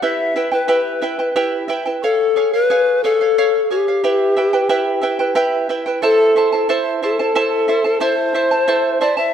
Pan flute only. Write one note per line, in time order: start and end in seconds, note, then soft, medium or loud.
0.04 0.50 E5 medium
0.54 1.67 B4 medium
2.03 2.55 A4 loud
2.54 3.05 B4 loud
3.04 3.71 A4 medium
3.71 5.34 G4 medium
6.04 6.66 A4 loud
7.04 8.02 A4 medium
8.00 9.00 C5 loud
9.01 9.19 D5 medium
9.17 9.34 E5 medium